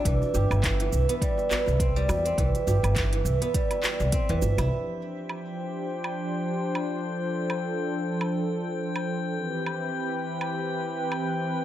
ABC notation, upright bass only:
X:1
M:4/4
L:1/16
Q:"Swing 16ths" 1/4=103
K:Gmix
V:1 name="Upright bass" clef=bass
C,, z G,,, G,,,3 C,, z4 C,,3 E,, z | C,, z G,,, G,,,3 C,, z4 C,, z E,, G,,, C,, | z16 | z16 |
z16 |]